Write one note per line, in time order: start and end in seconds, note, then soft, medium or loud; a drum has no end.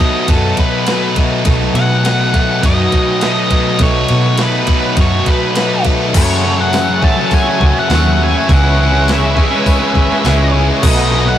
0.00 0.27 B2 medium
0.00 0.28 B2 medium
0.00 1.19 B2 medium
0.00 0.29 F#3 medium
0.00 1.18 F#3 medium
0.00 1.18 A3 medium
0.00 0.30 A3 medium
0.00 0.31 B3 medium
0.00 1.17 D#4 loud
0.00 0.30 D#4 medium
0.00 0.29 F#4 medium
0.00 1.16 F#4 loud
0.00 0.87 A4 medium
0.00 0.32 D#5 medium
0.27 0.51 F#2 medium
0.27 1.44 B2 medium
0.27 0.87 B2 medium
0.27 0.87 F#3 medium
0.27 1.46 F#3 medium
0.27 0.88 A3 medium
0.27 1.48 B3 medium
0.27 0.89 D#4 medium
0.27 2.05 F#4 medium
0.27 0.59 A4 medium
0.27 kick loud
0.27 ride loud
0.57 1.13 B4 medium
0.57 kick medium
0.57 ride medium
0.87 1.16 B2 medium
0.87 1.16 F#3 medium
0.87 1.17 A3 medium
0.87 1.18 D#4 medium
0.87 1.46 B4 medium
0.87 snare loud
0.87 ride medium
1.16 1.44 B2 medium
1.16 1.46 B2 medium
1.16 1.45 F#3 medium
1.16 1.47 F#3 medium
1.16 1.46 A3 medium
1.16 1.47 A3 medium
1.16 1.49 D#4 medium
1.16 1.46 D#4 medium
1.16 1.49 F#4 medium
1.16 kick medium
1.16 ride medium
1.45 1.67 B1 loud
1.45 2.03 B2 medium
1.45 2.62 B2 medium
1.45 3.49 B2 medium
1.45 2.04 F#3 medium
1.45 2.64 F#3 medium
1.45 3.53 F#3 loud
1.45 2.04 A3 medium
1.45 3.52 A3 loud
1.45 2.65 B3 medium
1.45 2.05 D#4 loud
1.45 3.22 A4 medium
1.45 kick loud
1.45 ride medium
1.49 3.50 D#4 loud
1.49 3.50 F#4 loud
1.62 snare soft
1.74 2.41 B2 medium
1.74 2.66 F#5 loud
1.74 ride medium
1.91 snare soft
2.04 2.33 B2 medium
2.04 2.33 F#3 medium
2.04 2.34 A3 loud
2.04 2.35 D#4 loud
2.04 2.64 F#4 medium
2.04 snare loud
2.04 ride medium
2.33 2.60 B2 medium
2.33 2.61 F#3 medium
2.33 2.62 A3 medium
2.33 2.62 D#4 medium
2.33 kick medium
2.33 ride medium
2.61 2.85 F#2 loud
2.61 3.20 B2 medium
2.61 3.78 B2 medium
2.61 3.22 F#3 medium
2.61 3.81 F#3 medium
2.61 3.23 A3 medium
2.61 3.22 D#4 medium
2.61 4.39 F#4 medium
2.61 kick loud
2.61 ride medium
2.66 3.80 B3 medium
2.66 3.22 D#5 medium
2.92 kick medium
2.92 ride medium
3.21 3.50 B2 medium
3.21 3.52 F#3 medium
3.21 3.52 A3 medium
3.21 3.52 D#4 medium
3.21 3.81 B4 medium
3.21 3.83 D#5 medium
3.21 snare loud
3.21 ride medium
3.51 3.78 B2 medium
3.51 3.79 B2 medium
3.51 3.79 F#3 medium
3.51 3.80 F#3 medium
3.51 3.81 A3 medium
3.51 3.79 A3 medium
3.51 3.79 D#4 medium
3.51 3.80 D#4 medium
3.51 3.83 F#4 medium
3.51 kick medium
3.51 ride medium
3.79 4.02 B1 loud
3.79 4.37 B2 medium
3.79 4.95 B2 medium
3.79 5.84 B2 medium
3.79 4.37 F#3 medium
3.79 5.84 F#3 medium
3.79 4.96 F#3 medium
3.79 4.38 A3 medium
3.79 5.84 A3 medium
3.79 4.38 D#4 medium
3.79 5.85 D#4 loud
3.79 5.84 F#4 loud
3.79 4.39 A4 medium
3.79 4.42 C#5 medium
3.79 kick loud
3.79 ride medium
3.83 4.97 B3 medium
4.08 4.76 B2 medium
4.08 ride medium
4.24 snare soft
4.38 4.66 B2 medium
4.38 4.67 F#3 medium
4.38 4.67 A3 medium
4.38 4.67 D#4 loud
4.38 4.96 F#4 medium
4.38 snare loud
4.38 ride medium
4.42 4.95 B4 medium
4.67 4.95 B2 medium
4.67 4.96 F#3 medium
4.67 4.96 A3 medium
4.67 4.97 D#4 medium
4.67 kick medium
4.67 ride medium
4.96 5.19 F#2 medium
4.96 6.12 B2 medium
4.96 5.54 B2 medium
4.96 5.55 F#3 medium
4.96 6.14 F#3 medium
4.96 5.55 A3 medium
4.96 6.14 B3 medium
4.96 5.56 D#4 medium
4.96 5.56 F#4 medium
4.96 5.29 C#5 medium
4.96 kick loud
4.96 ride medium
5.26 5.82 B4 medium
5.26 kick medium
5.26 ride medium
5.55 5.83 B2 medium
5.55 5.83 F#3 medium
5.55 5.84 A3 medium
5.55 5.85 D#4 loud
5.55 6.15 B4 medium
5.55 snare loud
5.55 ride medium
5.84 6.12 B2 medium
5.84 6.13 F#3 medium
5.84 6.13 A3 medium
5.84 6.14 A3 medium
5.84 6.13 D#4 medium
5.84 6.13 F#4 medium
5.84 kick medium
5.84 ride medium
5.88 6.15 B2 medium
5.88 6.14 F#3 medium
6.13 7.00 F#2 medium
6.13 6.42 F#2 medium
6.13 7.03 F#2 medium
6.13 6.72 F#2 medium
6.13 7.01 C#3 medium
6.13 6.72 C#3 loud
6.13 6.44 C#3 medium
6.13 6.43 E3 medium
6.13 7.01 F#3 loud
6.13 6.43 A3 loud
6.13 7.01 A3 medium
6.13 7.01 C#4 medium
6.13 6.74 A4 medium
6.13 8.48 A4 medium
6.13 10.81 E5 medium
6.13 8.48 F#5 medium
6.13 10.81 C#6 medium
6.13 kick loud
6.13 open hi-hat medium
6.13 crash loud
6.17 6.45 F#3 loud
6.17 6.45 C#4 loud
6.17 6.45 A4 loud
6.17 6.62 C#5 medium
6.43 6.71 F#2 medium
6.43 6.59 C#3 medium
6.43 6.62 E3 medium
6.43 6.56 F#3 medium
6.43 6.60 A3 medium
6.43 6.60 C#4 medium
6.43 6.58 A4 medium
6.57 6.73 C#3 medium
6.57 6.74 F#3 medium
6.57 6.75 C#4 medium
6.57 6.75 A4 medium
6.57 7.04 F#5 loud
6.61 6.74 E3 medium
6.61 6.74 A3 medium
6.72 7.01 F#2 medium
6.72 7.32 F#2 medium
6.72 7.32 C#3 medium
6.72 6.88 C#3 loud
6.72 7.02 E3 loud
6.72 6.85 F#3 loud
6.72 7.03 A3 medium
6.72 7.05 C#4 medium
6.72 snare loud
6.72 open hi-hat medium
6.76 7.05 A4 loud
6.86 7.02 C#3 medium
6.86 7.02 F#3 medium
7.01 7.90 C#3 medium
7.01 7.20 E3 medium
7.01 7.89 F#3 medium
7.01 7.89 A3 medium
7.01 7.19 A3 medium
7.01 7.88 C#4 medium
7.01 7.34 A5 loud
7.01 muted distorted electric guitar stroke medium
7.01 kick loud
7.05 7.88 F#2 medium
7.05 7.18 C#4 medium
7.05 7.16 A4 medium
7.16 7.47 C#3 medium
7.16 7.44 F#3 medium
7.16 7.32 A3 medium
7.16 7.33 C#4 medium
7.16 7.34 A4 medium
7.21 7.31 E3 medium
7.31 7.49 E3 medium
7.31 7.48 A3 medium
7.31 7.47 C#4 medium
7.31 7.79 G#5 loud
7.31 kick medium
7.31 open hi-hat medium
7.35 7.46 A4 medium
7.45 7.60 C#3 medium
7.45 7.62 F#3 medium
7.45 7.74 A4 medium
7.49 7.78 E3 medium
7.49 7.77 A3 medium
7.60 7.72 C#2 medium
7.60 7.88 F#2 medium
7.60 7.90 C#3 medium
7.60 7.91 F#3 medium
7.60 kick medium
7.76 7.91 E3 medium
7.76 7.92 A3 medium
7.76 7.92 C#4 medium
7.76 7.93 A4 medium
7.76 8.23 F#5 loud
7.76 snare soft
7.89 8.34 D#2 medium
7.89 8.18 F#2 loud
7.89 8.47 F#2 medium
7.89 8.48 F#2 medium
7.89 8.06 C#3 loud
7.89 8.47 C#3 medium
7.89 8.48 C#3 medium
7.89 8.20 E3 loud
7.89 8.48 F#3 medium
7.89 8.03 F#3 loud
7.89 8.21 A3 medium
7.89 8.50 F#4 medium
7.89 snare loud
7.89 open hi-hat medium
7.93 8.49 A3 medium
7.93 8.21 C#4 medium
7.93 8.49 C#4 medium
7.93 8.22 A4 medium
8.04 8.20 C#3 medium
8.04 8.22 F#3 medium
8.19 8.47 F#2 medium
8.19 8.48 C#3 medium
8.19 8.37 E3 medium
8.19 8.49 F#3 medium
8.19 8.36 A3 medium
8.19 8.35 C#4 medium
8.24 8.34 A4 loud
8.24 8.52 G#5 loud
8.35 8.49 E3 medium
8.35 8.49 A3 medium
8.35 8.48 C#4 medium
8.35 8.48 A4 medium
8.48 9.37 C#2 loud
8.48 9.35 C#3 medium
8.48 8.76 C#3 medium
8.48 9.07 C#3 loud
8.48 9.36 E3 medium
8.48 8.77 E3 loud
8.48 8.78 G#3 medium
8.48 9.36 G#3 medium
8.48 8.80 B3 loud
8.48 9.35 C#4 loud
8.48 9.08 G#4 medium
8.48 10.81 B4 medium
8.48 10.81 G#5 medium
8.48 kick loud
8.48 open hi-hat medium
8.52 8.80 C#4 loud
8.52 8.81 G#4 loud
8.52 9.12 F#5 loud
8.78 9.05 C#3 medium
8.78 9.08 E3 medium
8.78 8.95 G#3 medium
8.78 8.97 B3 medium
8.78 8.95 C#4 medium
8.78 8.91 C#4 medium
8.82 8.92 G#4 medium
8.92 9.07 G#3 medium
8.92 9.09 C#4 medium
8.92 9.10 G#4 medium
8.97 9.09 B3 medium
9.06 9.35 C#3 loud
9.06 9.67 C#3 medium
9.06 9.36 E3 medium
9.06 9.23 G#3 loud
9.06 9.38 B3 loud
9.06 9.18 C#4 medium
9.06 9.66 F#4 medium
9.06 snare loud
9.06 open hi-hat medium
9.11 9.38 C#4 medium
9.11 9.39 G#4 loud
9.11 10.52 E5 medium
9.20 9.36 C#4 medium
9.24 9.36 G#3 medium
9.36 10.22 C#3 medium
9.36 9.64 E3 medium
9.36 10.24 E3 medium
9.36 10.24 G#3 medium
9.36 9.55 B3 medium
9.36 10.23 C#4 loud
9.36 9.52 C#4 medium
9.36 9.51 G#4 medium
9.36 muted distorted electric guitar stroke soft
9.36 kick medium
9.50 9.82 G#3 medium
9.50 9.78 C#4 medium
9.50 9.67 C#4 medium
9.50 9.68 G#4 medium
9.55 9.67 B3 medium
9.66 10.10 E3 medium
9.66 9.83 B3 medium
9.66 9.81 C#4 medium
9.66 10.23 E4 medium
9.66 9.79 G#4 medium
9.66 kick medium
9.66 open hi-hat medium
9.79 9.94 G#3 medium
9.79 9.95 C#4 medium
9.79 10.11 C#4 medium
9.79 10.10 G#4 medium
9.83 10.13 B3 medium
9.93 10.07 G#1 medium
9.93 10.22 C#3 medium
9.93 10.24 G#3 medium
9.93 10.26 C#4 medium
9.93 kick medium
10.11 10.26 B3 medium
10.11 10.25 C#4 medium
10.11 10.26 G#4 medium
10.11 snare soft
10.23 10.69 C#2 medium
10.23 10.51 C#3 medium
10.23 10.81 C#3 medium
10.23 10.52 E3 medium
10.23 10.82 E3 medium
10.23 10.40 G#3 loud
10.23 10.83 G#3 medium
10.23 10.54 B3 medium
10.23 10.55 C#4 loud
10.23 10.37 C#4 loud
10.23 10.82 E4 medium
10.23 10.56 G#4 loud
10.23 snare loud
10.23 open hi-hat medium
10.27 10.83 C#4 medium
10.38 10.54 G#3 medium
10.38 10.55 C#4 medium
10.53 10.81 C#3 medium
10.53 10.82 E3 medium
10.53 10.82 G#3 medium
10.53 10.71 B3 medium
10.53 10.69 C#4 medium
10.53 10.83 C#4 loud
10.57 10.67 G#4 medium
10.68 10.83 B3 medium
10.68 10.83 C#4 medium
10.68 10.82 G#4 medium
10.82 11.38 B1 loud
10.82 11.11 B2 medium
10.82 11.38 B2 loud
10.82 11.12 F#3 loud
10.82 11.13 F#3 medium
10.82 11.38 F#3 loud
10.82 11.38 A3 medium
10.82 11.13 A3 loud
10.82 11.38 A3 medium
10.82 11.14 B3 loud
10.82 11.15 D#4 loud
10.82 11.15 F#4 loud
10.82 11.38 A4 medium
10.82 11.38 D#5 medium
10.82 11.29 D#5 loud
10.82 11.38 F#5 medium
10.82 11.38 B5 medium
10.82 kick loud
10.82 crash loud
10.86 11.38 D#4 loud
11.11 11.38 B2 medium
11.11 11.38 F#3 medium
11.11 11.28 F#3 medium
11.11 11.31 A3 medium
11.11 11.25 B3 medium
11.15 11.29 D#4 medium
11.15 11.27 F#4 medium
11.25 11.38 F#3 medium
11.25 11.38 B3 medium
11.25 11.38 F#4 medium
11.25 11.38 F#5 loud
11.30 11.38 A3 medium
11.30 11.38 D#4 medium